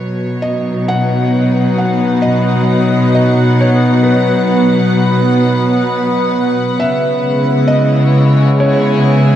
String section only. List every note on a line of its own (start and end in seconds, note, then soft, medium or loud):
0.00 6.79 B2 medium
0.00 6.78 F#3 medium
0.00 2.42 C#5 medium
0.49 6.78 D#4 medium
1.01 9.36 F#5 medium
1.08 8.24 B4 medium
6.81 9.36 C#3 medium
7.30 9.36 G#3 medium
7.41 9.36 E4 medium
7.90 9.36 C#5 medium
8.33 9.36 G#5 medium